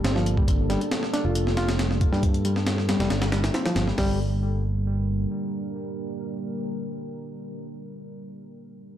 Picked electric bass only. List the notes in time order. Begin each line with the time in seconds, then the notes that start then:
0.04 G1
0.48 G1
1.25 F1
2.13 G2
3.00 F1
3.10 G1
3.76 G1
3.98 G1